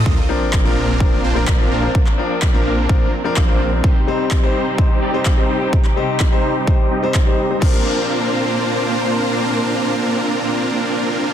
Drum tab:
CC |----------------|----------------|----------------|----------------|
CP |----x-------x---|-x--x-------x---|----x-------x---|-x--x-------x---|
BD |o---o---o---o---|o---o---o---o---|o---o---o---o---|o---o---o---o---|

CC |x---------------|----------------|
CP |----------------|----------------|
BD |o---------------|----------------|